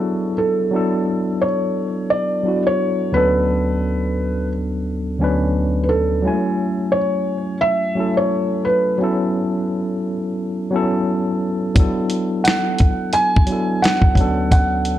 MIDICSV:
0, 0, Header, 1, 4, 480
1, 0, Start_track
1, 0, Tempo, 689655
1, 503, Time_signature, 4, 2, 24, 8
1, 10431, End_track
2, 0, Start_track
2, 0, Title_t, "Felt piano"
2, 0, Program_c, 0, 0
2, 0, Note_on_c, 0, 66, 78
2, 233, Note_off_c, 0, 66, 0
2, 265, Note_on_c, 0, 69, 82
2, 985, Note_on_c, 0, 73, 85
2, 1005, Note_off_c, 0, 69, 0
2, 1463, Note_on_c, 0, 74, 97
2, 1478, Note_off_c, 0, 73, 0
2, 1824, Note_off_c, 0, 74, 0
2, 1856, Note_on_c, 0, 73, 102
2, 2185, Note_on_c, 0, 71, 104
2, 2194, Note_off_c, 0, 73, 0
2, 3116, Note_off_c, 0, 71, 0
2, 4061, Note_on_c, 0, 71, 60
2, 4098, Note_on_c, 0, 69, 88
2, 4100, Note_off_c, 0, 71, 0
2, 4815, Note_on_c, 0, 73, 92
2, 4842, Note_off_c, 0, 69, 0
2, 5271, Note_off_c, 0, 73, 0
2, 5297, Note_on_c, 0, 76, 114
2, 5661, Note_off_c, 0, 76, 0
2, 5687, Note_on_c, 0, 73, 94
2, 6019, Note_on_c, 0, 71, 94
2, 6030, Note_off_c, 0, 73, 0
2, 6244, Note_off_c, 0, 71, 0
2, 8658, Note_on_c, 0, 78, 86
2, 9112, Note_off_c, 0, 78, 0
2, 9142, Note_on_c, 0, 80, 110
2, 9621, Note_on_c, 0, 78, 104
2, 9636, Note_off_c, 0, 80, 0
2, 10095, Note_off_c, 0, 78, 0
2, 10106, Note_on_c, 0, 78, 89
2, 10431, Note_off_c, 0, 78, 0
2, 10431, End_track
3, 0, Start_track
3, 0, Title_t, "Tine electric piano"
3, 0, Program_c, 1, 4
3, 0, Control_c, 1, 64, 127
3, 0, Note_on_c, 1, 54, 60
3, 0, Note_on_c, 1, 59, 57
3, 0, Note_on_c, 1, 62, 52
3, 0, Note_on_c, 1, 64, 52
3, 0, Note_on_c, 1, 68, 50
3, 0, Note_on_c, 1, 69, 64
3, 360, Note_off_c, 1, 54, 0
3, 366, Note_off_c, 1, 59, 0
3, 369, Note_off_c, 1, 62, 0
3, 374, Note_off_c, 1, 64, 0
3, 401, Note_off_c, 1, 69, 0
3, 493, Note_on_c, 1, 54, 68
3, 502, Note_on_c, 1, 59, 64
3, 511, Note_on_c, 1, 62, 69
3, 512, Control_c, 1, 64, 0
3, 514, Note_off_c, 1, 68, 0
3, 520, Note_on_c, 1, 64, 62
3, 529, Note_on_c, 1, 69, 81
3, 613, Control_c, 1, 64, 127
3, 1255, Note_off_c, 1, 54, 0
3, 1259, Note_off_c, 1, 59, 0
3, 1264, Note_off_c, 1, 62, 0
3, 1269, Note_off_c, 1, 64, 0
3, 1273, Note_off_c, 1, 69, 0
3, 1692, Note_on_c, 1, 54, 61
3, 1701, Note_on_c, 1, 59, 53
3, 1710, Note_on_c, 1, 62, 59
3, 1719, Note_on_c, 1, 64, 64
3, 1727, Note_on_c, 1, 66, 72
3, 2170, Note_off_c, 1, 54, 0
3, 2172, Note_on_c, 1, 38, 77
3, 2177, Note_off_c, 1, 59, 0
3, 2178, Note_on_c, 1, 54, 68
3, 2185, Note_on_c, 1, 59, 67
3, 2186, Note_off_c, 1, 62, 0
3, 2191, Note_off_c, 1, 64, 0
3, 2192, Control_c, 1, 64, 0
3, 2194, Note_on_c, 1, 61, 57
3, 2195, Note_off_c, 1, 66, 0
3, 2201, Note_on_c, 1, 62, 66
3, 2207, Note_on_c, 1, 69, 81
3, 2327, Control_c, 1, 64, 127
3, 2957, Note_off_c, 1, 38, 0
3, 2960, Note_off_c, 1, 54, 0
3, 2963, Note_off_c, 1, 59, 0
3, 2968, Note_off_c, 1, 61, 0
3, 2971, Note_off_c, 1, 62, 0
3, 2974, Note_off_c, 1, 69, 0
3, 3608, Note_on_c, 1, 38, 78
3, 3615, Note_on_c, 1, 54, 65
3, 3625, Note_on_c, 1, 59, 64
3, 3630, Note_on_c, 1, 61, 79
3, 3638, Note_on_c, 1, 62, 75
3, 3646, Note_on_c, 1, 71, 88
3, 4198, Note_off_c, 1, 38, 0
3, 4201, Note_off_c, 1, 54, 0
3, 4206, Note_off_c, 1, 59, 0
3, 4209, Note_off_c, 1, 61, 0
3, 4213, Note_off_c, 1, 62, 0
3, 4217, Note_off_c, 1, 71, 0
3, 4331, Note_on_c, 1, 54, 72
3, 4343, Note_on_c, 1, 56, 59
3, 4350, Control_c, 1, 64, 0
3, 4350, Note_on_c, 1, 61, 71
3, 4358, Note_on_c, 1, 64, 69
3, 4368, Note_on_c, 1, 80, 78
3, 4388, Note_on_c, 1, 57, 67
3, 4399, Note_off_c, 1, 56, 0
3, 4492, Control_c, 1, 64, 127
3, 5094, Note_off_c, 1, 54, 0
3, 5104, Note_off_c, 1, 61, 0
3, 5108, Note_off_c, 1, 64, 0
3, 5113, Note_off_c, 1, 80, 0
3, 5123, Note_off_c, 1, 57, 0
3, 5532, Note_on_c, 1, 54, 62
3, 5542, Note_on_c, 1, 57, 64
3, 5548, Note_on_c, 1, 61, 63
3, 5560, Note_on_c, 1, 64, 64
3, 5569, Note_on_c, 1, 69, 80
3, 6120, Note_off_c, 1, 54, 0
3, 6124, Note_off_c, 1, 57, 0
3, 6128, Note_off_c, 1, 61, 0
3, 6134, Note_off_c, 1, 64, 0
3, 6138, Note_off_c, 1, 69, 0
3, 6252, Note_on_c, 1, 54, 74
3, 6262, Note_on_c, 1, 59, 63
3, 6269, Note_on_c, 1, 61, 64
3, 6272, Control_c, 1, 64, 0
3, 6280, Note_on_c, 1, 64, 73
3, 6289, Note_on_c, 1, 69, 81
3, 6403, Control_c, 1, 64, 127
3, 7015, Note_off_c, 1, 54, 0
3, 7020, Note_off_c, 1, 59, 0
3, 7023, Note_off_c, 1, 61, 0
3, 7028, Note_off_c, 1, 64, 0
3, 7033, Note_off_c, 1, 69, 0
3, 7452, Note_on_c, 1, 54, 78
3, 7461, Note_on_c, 1, 59, 71
3, 7469, Note_on_c, 1, 61, 66
3, 7478, Note_on_c, 1, 64, 72
3, 7488, Note_on_c, 1, 69, 94
3, 8040, Note_off_c, 1, 54, 0
3, 8044, Note_off_c, 1, 59, 0
3, 8048, Note_off_c, 1, 61, 0
3, 8053, Note_off_c, 1, 64, 0
3, 8058, Note_off_c, 1, 69, 0
3, 8174, Note_on_c, 1, 54, 72
3, 8182, Note_on_c, 1, 59, 68
3, 8192, Control_c, 1, 64, 0
3, 8193, Note_on_c, 1, 62, 63
3, 8201, Note_on_c, 1, 64, 65
3, 8210, Note_on_c, 1, 69, 77
3, 8322, Control_c, 1, 64, 127
3, 8936, Note_off_c, 1, 54, 0
3, 8939, Note_off_c, 1, 59, 0
3, 8945, Note_off_c, 1, 62, 0
3, 8949, Note_off_c, 1, 64, 0
3, 8953, Note_off_c, 1, 69, 0
3, 9374, Note_on_c, 1, 54, 72
3, 9384, Note_on_c, 1, 59, 58
3, 9393, Note_on_c, 1, 62, 54
3, 9402, Note_on_c, 1, 64, 61
3, 9411, Note_on_c, 1, 69, 64
3, 9851, Note_off_c, 1, 54, 0
3, 9853, Note_on_c, 1, 38, 71
3, 9857, Note_off_c, 1, 59, 0
3, 9859, Note_on_c, 1, 54, 67
3, 9865, Note_on_c, 1, 59, 70
3, 9868, Note_off_c, 1, 62, 0
3, 9872, Note_off_c, 1, 64, 0
3, 9872, Control_c, 1, 64, 0
3, 9875, Note_on_c, 1, 61, 67
3, 9877, Note_off_c, 1, 69, 0
3, 9881, Note_on_c, 1, 62, 71
3, 9889, Note_on_c, 1, 69, 76
3, 9982, Control_c, 1, 64, 127
3, 10431, Note_off_c, 1, 38, 0
3, 10431, Note_off_c, 1, 54, 0
3, 10431, Note_off_c, 1, 59, 0
3, 10431, Note_off_c, 1, 61, 0
3, 10431, Note_off_c, 1, 62, 0
3, 10431, Note_off_c, 1, 69, 0
3, 10431, End_track
4, 0, Start_track
4, 0, Title_t, "Drums"
4, 8183, Note_on_c, 9, 36, 118
4, 8186, Note_on_c, 9, 42, 90
4, 8253, Note_off_c, 9, 36, 0
4, 8255, Note_off_c, 9, 42, 0
4, 8419, Note_on_c, 9, 42, 57
4, 8489, Note_off_c, 9, 42, 0
4, 8665, Note_on_c, 9, 42, 87
4, 8684, Note_on_c, 9, 26, 89
4, 8684, Note_on_c, 9, 38, 108
4, 8735, Note_off_c, 9, 42, 0
4, 8753, Note_off_c, 9, 26, 0
4, 8754, Note_off_c, 9, 38, 0
4, 8899, Note_on_c, 9, 42, 67
4, 8911, Note_on_c, 9, 36, 93
4, 8968, Note_off_c, 9, 42, 0
4, 8980, Note_off_c, 9, 36, 0
4, 9136, Note_on_c, 9, 42, 81
4, 9206, Note_off_c, 9, 42, 0
4, 9302, Note_on_c, 9, 36, 90
4, 9371, Note_off_c, 9, 36, 0
4, 9374, Note_on_c, 9, 42, 59
4, 9443, Note_off_c, 9, 42, 0
4, 9632, Note_on_c, 9, 42, 80
4, 9643, Note_on_c, 9, 26, 76
4, 9643, Note_on_c, 9, 38, 98
4, 9701, Note_off_c, 9, 42, 0
4, 9712, Note_off_c, 9, 26, 0
4, 9712, Note_off_c, 9, 38, 0
4, 9755, Note_on_c, 9, 36, 105
4, 9825, Note_off_c, 9, 36, 0
4, 9851, Note_on_c, 9, 36, 81
4, 9865, Note_on_c, 9, 42, 59
4, 9920, Note_off_c, 9, 36, 0
4, 9934, Note_off_c, 9, 42, 0
4, 10102, Note_on_c, 9, 36, 120
4, 10104, Note_on_c, 9, 42, 98
4, 10172, Note_off_c, 9, 36, 0
4, 10174, Note_off_c, 9, 42, 0
4, 10336, Note_on_c, 9, 42, 57
4, 10405, Note_off_c, 9, 42, 0
4, 10431, End_track
0, 0, End_of_file